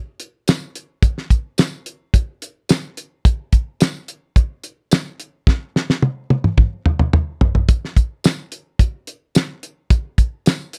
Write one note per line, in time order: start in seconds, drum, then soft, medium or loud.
0.20 closed hi-hat medium
0.48 snare loud
0.48 closed hi-hat medium
0.48 tambourine loud
0.75 closed hi-hat medium
1.03 kick loud
1.03 closed hi-hat medium
1.18 snare soft
1.30 kick medium
1.30 closed hi-hat medium
1.58 snare loud
1.58 closed hi-hat medium
1.58 tambourine loud
1.86 closed hi-hat medium
2.14 kick medium
2.14 closed hi-hat medium
2.42 closed hi-hat medium
2.69 snare loud
2.69 closed hi-hat medium
2.69 tambourine loud
2.97 closed hi-hat medium
3.25 kick loud
3.25 closed hi-hat medium
3.52 kick medium
3.52 closed hi-hat medium
3.80 snare loud
3.80 closed hi-hat medium
3.80 tambourine loud
4.08 closed hi-hat medium
4.36 kick medium
4.36 closed hi-hat medium
4.64 closed hi-hat medium
4.91 snare loud
4.91 closed hi-hat medium
4.91 tambourine loud
5.20 closed hi-hat medium
5.47 kick loud
5.47 snare medium
5.76 snare medium
5.90 snare medium
6.02 high tom medium
6.30 high tom medium
6.44 mid tom medium
6.58 kick medium
6.58 mid tom medium
6.86 mid tom medium
6.99 mid tom medium
7.13 mid tom loud
7.41 floor tom loud
7.55 floor tom medium
7.69 kick loud
7.69 closed hi-hat medium
7.85 snare soft
7.97 kick medium
7.97 closed hi-hat medium
8.24 snare loud
8.24 closed hi-hat medium
8.24 tambourine loud
8.52 closed hi-hat medium
8.79 kick medium
8.79 closed hi-hat medium
9.07 closed hi-hat medium
9.35 snare loud
9.35 closed hi-hat medium
9.35 tambourine loud
9.63 closed hi-hat medium
9.90 kick loud
9.90 closed hi-hat medium
10.18 kick medium
10.18 closed hi-hat medium
10.46 snare loud
10.46 closed hi-hat medium
10.46 tambourine loud
10.73 closed hi-hat medium